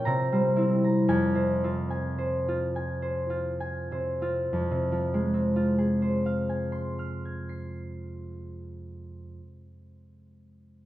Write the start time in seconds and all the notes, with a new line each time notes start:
Already playing: A#2 C#4 F4 G5
0.05 C3 A#5
0.32 G3 C5
0.56 C4 E4
0.84 A#5
1.08 F2 G#5
1.35 C3 C5
1.64 C4 F4
1.90 G#5
2.18 C5
2.48 F4
2.76 G#5
3.02 C5
3.30 F4
3.60 G#5
3.91 C3 C5
4.21 C4 F4
4.53 F2
4.71 C3
4.92 F3
5.14 G#3
5.34 C4
5.56 F4
5.78 G#4
6.02 C5
6.26 F5
6.49 G#5
6.72 C6
6.99 F6
7.25 G#6
7.49 C7